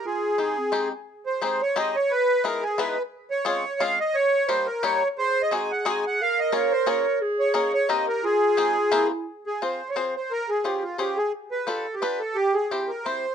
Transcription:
0.06 0.41 F4 medium
0.06 0.89 G#4 medium
0.38 0.57 G#3 medium
0.38 0.57 C4 medium
0.38 0.57 D#4 soft
0.38 0.60 D#4 medium
0.38 0.57 G4 medium
0.58 0.92 C4 medium
0.72 0.91 G#3 medium
0.72 0.91 C4 medium
0.72 0.91 D#4 medium
0.72 0.92 G4 medium
1.26 1.42 C5 medium
1.42 1.60 G#3 medium
1.42 1.60 C4 medium
1.42 1.61 D#4 medium
1.42 1.61 G4 medium
1.42 1.61 G#4 medium
1.42 1.62 C5 medium
1.62 1.78 C#5 loud
1.76 1.95 G#3 medium
1.76 1.95 C4 medium
1.76 1.95 D#4 medium
1.76 1.95 G4 medium
1.76 1.95 G#4 medium
1.76 1.96 D#5 medium
1.96 2.12 C#5 medium
2.11 2.46 B4 loud
2.44 2.63 G#3 medium
2.44 2.63 B3 medium
2.44 2.63 D#4 medium
2.44 2.63 E4 medium
2.44 2.63 G#4 medium
2.44 2.64 A#4 medium
2.63 2.79 G#4 medium
2.78 2.96 G#3 medium
2.78 2.97 B3 medium
2.78 2.97 D#4 medium
2.78 2.97 E4 medium
2.78 2.97 G#4 medium
2.78 3.02 B4 medium
3.31 3.46 C#5 loud
3.45 3.64 G#3 medium
3.45 3.64 C4 medium
3.45 3.64 C#4 medium
3.45 3.64 F4 medium
3.45 3.64 G#4 medium
3.45 3.82 C#5 medium
3.80 3.99 G#3 medium
3.80 3.99 C4 medium
3.80 3.99 C#4 medium
3.80 3.99 F4 medium
3.80 3.99 G#4 medium
3.80 3.99 F5 loud
4.00 4.16 D#5 loud
4.14 4.50 C#5 loud
4.48 4.67 G3 medium
4.48 4.67 A#3 medium
4.48 4.67 D#4 medium
4.48 4.67 G4 medium
4.48 4.67 A#4 medium
4.48 4.67 C5 medium
4.66 4.83 A#4 medium
4.83 5.02 G3 medium
4.83 5.02 A#3 medium
4.83 5.02 D#4 medium
4.83 5.02 G4 medium
4.83 5.02 A#4 medium
4.83 5.08 C#5 loud
5.18 6.23 G#4 loud
5.18 5.42 C5 loud
5.42 5.53 D#5 loud
5.51 5.70 G#3 medium
5.51 5.70 C4 medium
5.51 5.71 D#4 medium
5.51 5.71 F#4 medium
5.51 5.71 G#4 medium
5.51 5.72 G#5 medium
5.71 5.88 F#5 medium
5.85 6.04 G#3 medium
5.85 6.04 C4 medium
5.85 6.04 D#4 medium
5.85 6.04 F#4 medium
5.85 6.04 G#4 medium
5.85 6.05 G#5 medium
6.07 6.22 F#5 loud
6.22 7.23 A#4 loud
6.22 6.40 F5 loud
6.39 6.54 D#5 loud
6.52 6.71 A#3 medium
6.52 6.71 C#4 medium
6.52 6.71 F4 medium
6.52 6.71 G#4 medium
6.52 6.72 A#4 medium
6.52 6.73 C#5 medium
6.72 6.88 C5 loud
6.86 7.05 A#3 medium
6.86 7.05 C#4 medium
6.86 7.05 F4 medium
6.86 7.05 G#4 medium
6.86 7.05 A#4 medium
6.86 7.19 C#5 medium
7.21 7.89 G#4 loud
7.39 7.53 C#5 loud
7.54 7.73 A#3 medium
7.54 7.73 C#4 medium
7.54 7.73 D#4 medium
7.54 7.73 G#4 medium
7.54 7.73 A#4 medium
7.54 7.72 C#5 medium
7.74 7.90 C#5 loud
7.89 8.07 A#3 medium
7.89 8.08 C4 medium
7.89 8.08 D#4 medium
7.89 8.08 G4 medium
7.89 8.21 G4 medium
7.89 8.08 A#4 medium
7.89 8.06 D#5 medium
8.08 8.24 A#4 medium
8.24 8.89 F4 loud
8.24 9.07 G#4 loud
8.57 8.76 G#3 medium
8.57 8.76 C4 medium
8.57 8.76 D#4 medium
8.57 8.76 G4 medium
8.57 8.76 G#4 medium
8.92 9.11 A#3 medium
8.92 9.11 C4 medium
8.92 9.11 E4 medium
8.92 9.26 E4 medium
8.92 9.11 G4 medium
8.92 9.11 A#4 loud
9.47 9.63 G#4 medium
9.62 9.81 C4 medium
9.62 9.81 F4 medium
9.62 9.81 G#4 medium
9.62 9.81 C5 medium
9.62 9.90 C5 medium
9.89 9.97 C#5 medium
9.96 10.15 C4 medium
9.96 10.15 F4 soft
9.96 10.15 G#4 medium
9.96 10.15 C5 medium
9.96 10.14 C5 medium
10.16 10.32 C5 medium
10.31 10.50 A#4 loud
10.49 10.66 G#4 medium
10.64 10.83 C#4 soft
10.64 10.83 F4 medium
10.64 10.84 G4 medium
10.64 10.83 G#4 medium
10.64 10.83 C5 medium
10.82 10.98 F4 medium
10.98 11.17 C#4 medium
10.98 11.17 F4 medium
10.98 11.18 G4 medium
10.98 11.17 G#4 medium
10.98 11.18 C5 medium
11.17 11.32 G#4 medium
11.51 11.69 B4 medium
11.67 11.86 D4 medium
11.67 11.86 F4 medium
11.67 11.86 G4 medium
11.67 11.95 A4 medium
11.67 11.86 B4 medium
11.94 12.03 G4 medium
12.02 12.21 D4 medium
12.02 12.21 F4 medium
12.02 12.21 G4 medium
12.02 12.19 B4 medium
12.02 12.21 B4 medium
12.19 12.37 A4 medium
12.35 12.55 G4 loud
12.54 12.72 G#4 medium
12.71 12.90 C4 medium
12.71 12.90 E4 soft
12.71 12.90 G4 medium
12.71 12.90 C5 medium
12.88 13.06 A#4 medium
13.04 13.25 C4 medium
13.04 13.25 E4 medium
13.04 13.25 G4 soft
13.04 13.35 C5 medium
13.04 13.25 C5 medium

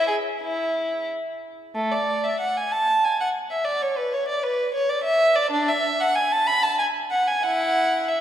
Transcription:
0.07 0.15 G#4 medium
0.41 1.07 E4 medium
1.75 1.91 A3 medium
1.92 2.24 D5 medium
2.24 2.40 E5 medium
2.40 2.55 F#5 medium
2.57 2.72 G#5 medium
2.72 3.03 A5 medium
3.04 3.20 G#5 medium
3.20 3.28 F#5 medium
3.51 3.66 E5 medium
3.65 3.81 D5 medium
3.82 3.97 C#5 medium
3.97 4.12 B4 medium
4.13 4.28 C#5 medium
4.28 4.43 D5 medium
4.43 4.74 B4 medium
4.74 4.89 C#5 medium
4.89 5.04 D5 medium
5.03 5.35 E5 medium
5.35 5.52 D5 medium
5.51 5.68 D4 medium
5.68 6.00 E5 medium
6.00 6.16 F#5 medium
6.15 6.32 G#5 medium
6.32 6.48 A5 medium
6.47 6.63 B5 medium
6.63 6.80 A5 medium
6.79 6.87 G#5 medium
7.11 7.27 F#5 medium
7.27 7.44 G#5 medium
7.43 8.05 E4 medium
7.43 8.09 F#5 medium
8.08 8.21 E5 medium

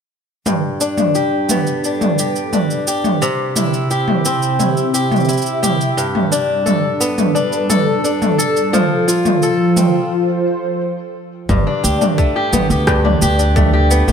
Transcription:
0.46 3.22 G2 medium
0.46 3.22 G3 medium
0.46 mid tom medium
0.46 shaker soft
0.81 1.84 D4 medium
0.81 shaker medium
0.98 4.32 B4 medium
0.98 mid tom medium
0.98 shaker soft
1.15 4.32 D4 medium
1.15 2.19 G4 medium
1.15 shaker soft
1.41 4.32 A4 medium
1.49 3.29 B3 soft
1.49 mid tom medium
1.49 shaker medium
1.67 shaker soft
1.84 2.52 D4 soft
1.84 shaker soft
2.01 mid tom medium
2.01 shaker soft
2.19 2.87 G4 medium
2.19 shaker medium
2.36 shaker soft
2.53 3.29 D4 medium
2.53 mid tom medium
2.53 shaker soft
2.70 shaker soft
2.87 3.90 G4 medium
2.87 shaker medium
3.04 mid tom medium
3.04 shaker soft
3.22 5.98 C3 medium
3.22 shaker soft
3.56 4.58 E4 medium
3.56 mid tom medium
3.56 shaker medium
3.74 shaker soft
3.91 5.98 C4 medium
3.91 4.94 G4 medium
3.91 shaker soft
4.08 mid tom medium
4.12 7.08 G4 medium
4.25 6.05 C4 medium
4.25 shaker medium
4.42 7.07 E5 medium
4.42 shaker soft
4.59 5.27 E4 medium
4.59 mid tom medium
4.59 shaker soft
4.77 shaker soft
4.94 5.62 G4 medium
4.94 shaker medium
5.12 mid tom medium
5.12 shaker soft
5.16 shaker soft
5.20 shaker soft
5.25 6.04 E4 medium
5.25 shaker soft
5.29 shaker soft
5.33 shaker soft
5.37 shaker soft
5.42 shaker soft
5.46 shaker soft
5.63 6.65 G4 medium
5.63 mid tom medium
5.63 shaker medium
5.81 shaker soft
5.96 8.73 G2 medium
5.96 8.73 G3 medium
5.96 shaker soft
6.15 mid tom medium
6.26 9.84 D4 medium
6.32 7.34 D4 medium
6.32 shaker medium
6.66 7.69 A4 medium
6.66 mid tom medium
6.66 shaker soft
6.75 11.49 A4 medium
6.90 8.74 B4 medium
7.00 8.80 B3 medium
7.00 shaker medium
7.18 mid tom medium
7.18 shaker soft
7.35 8.03 D4 medium
7.35 shaker soft
7.53 shaker soft
7.70 8.38 A4 medium
7.70 mid tom medium
7.70 shaker medium
8.04 8.80 D4 medium
8.04 shaker soft
8.22 mid tom medium
8.22 shaker soft
8.38 9.42 A4 medium
8.38 shaker medium
8.57 shaker soft
8.73 11.49 F3 loud
8.73 10.11 F3 medium
8.73 mid tom medium
8.73 shaker soft
9.08 10.11 F4 medium
9.08 shaker medium
9.25 mid tom medium
9.25 shaker soft
9.42 10.62 A4 medium
9.42 shaker soft
9.52 11.50 F4 medium
9.77 10.11 C4 medium
9.77 mid tom medium
9.77 shaker medium
9.98 11.49 C5 medium
11.49 11.62 G1 medium
11.49 12.86 G2 medium
11.49 kick medium
11.49 mid tom medium
11.49 shaker soft
11.67 12.00 D4 medium
11.83 11.97 D2 medium
11.83 12.35 G4 medium
11.83 shaker medium
12.01 13.03 D4 medium
12.01 mid tom medium
12.01 shaker soft
12.18 13.55 A3 medium
12.18 kick loud
12.18 shaker soft
12.36 12.70 G4 medium
12.53 12.66 G1 medium
12.53 13.89 B3 medium
12.53 mid tom medium
12.53 shaker medium
12.70 13.14 D2 medium
12.70 13.22 G4 medium
12.70 shaker soft
12.87 14.12 G2 medium
12.87 kick medium
12.87 cross-stick medium
12.87 shaker soft
13.05 13.38 D4 medium
13.05 mid tom medium
13.22 14.01 D2 medium
13.22 13.73 G4 medium
13.22 shaker medium
13.39 14.12 D4 medium
13.39 shaker soft
13.56 14.12 A3 medium
13.56 kick medium
13.56 mid tom medium
13.56 shaker soft
13.73 14.08 G4 medium
13.91 14.12 B3 medium
13.91 shaker medium
14.08 14.12 G1 medium
14.08 14.12 G4 medium
14.08 mid tom medium
14.08 shaker soft

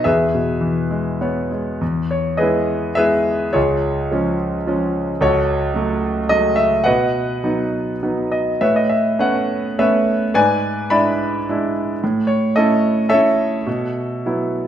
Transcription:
0.04 1.78 E2 medium
0.04 1.17 G#4 medium
0.04 1.17 B4 medium
0.04 1.16 E5 medium
0.35 1.49 B2 soft
0.61 1.78 E3 soft
0.91 1.50 G#3 soft
1.21 1.80 B3 soft
1.21 1.78 C#5 soft
1.51 1.81 G#3 soft
1.81 3.52 E2 medium
2.11 2.42 C#5 medium
2.37 2.88 G#3 soft
2.37 2.88 B3 soft
2.37 2.96 G#4 soft
2.37 2.96 B4 soft
2.37 2.99 D#5 medium
2.42 2.88 E4 soft
2.95 3.44 G#3 soft
2.95 3.44 B3 soft
2.95 3.45 E4 soft
2.95 3.51 G#4 medium
2.95 3.51 B4 medium
2.95 3.56 E5 medium
3.53 5.17 C#2 medium
3.53 4.35 F4 soft
3.53 4.35 G#4 medium
3.53 4.07 C#5 medium
4.11 4.56 F3 soft
4.11 4.56 G#3 soft
4.11 4.57 C#4 soft
4.67 5.11 F3 soft
4.67 5.11 G#3 soft
4.67 5.11 C#4 soft
5.21 6.83 C#2 medium
5.21 6.27 F#4 medium
5.21 6.27 A4 medium
5.21 6.35 C#5 medium
5.74 6.19 F#3 soft
5.74 6.20 A3 soft
6.29 6.75 F#3 soft
6.29 6.75 G#3 soft
6.29 6.75 A3 soft
6.29 6.59 D#5 medium
6.56 6.87 E5 medium
6.84 8.57 B2 medium
6.84 7.98 B4 medium
6.84 7.98 D#5 medium
6.84 7.97 F#5 medium
7.44 7.90 F#3 soft
7.44 7.91 B3 soft
7.44 7.91 D#4 soft
8.03 8.50 F#3 soft
8.03 8.50 B3 soft
8.03 8.50 D#4 soft
8.32 8.59 D#5 medium
8.61 10.30 A2 medium
8.61 9.18 B4 soft
8.61 9.18 C#5 medium
8.61 8.75 E5 medium
8.76 8.91 D#5 medium
8.89 9.17 E5 medium
9.19 9.66 A3 soft
9.19 9.66 B3 soft
9.19 9.67 C#4 soft
9.19 9.78 B4 medium
9.19 9.77 C#5 soft
9.19 9.80 F#5 medium
9.79 10.23 A3 soft
9.79 10.24 B3 soft
9.79 10.24 C#4 soft
9.79 10.31 B4 medium
9.79 10.31 C#5 medium
9.79 10.36 E5 medium
10.34 11.99 G#2 medium
10.34 11.15 B4 medium
10.34 10.89 D5 medium
10.34 10.93 G#5 medium
10.90 11.36 G#3 soft
10.90 11.36 D4 soft
10.90 11.37 E4 medium
10.90 11.71 D5 medium
10.90 11.71 E5 medium
10.90 11.43 B5 medium
11.49 11.92 G#3 soft
11.49 11.92 D4 soft
11.49 11.93 E4 medium
12.04 13.64 A2 medium
12.27 12.56 C#5 medium
12.56 13.01 A3 soft
12.56 13.01 C#4 soft
12.56 13.02 E4 medium
12.56 13.07 A4 medium
12.56 13.13 D#5 medium
13.09 14.67 A4 medium
13.09 14.67 C#5 medium
13.09 14.67 E5 medium
13.13 13.57 A3 soft
13.13 13.57 C#4 soft
13.13 13.58 E4 soft
13.67 14.67 B2 medium
14.26 14.67 F#3 soft
14.26 14.67 B3 soft
14.26 14.67 E4 soft

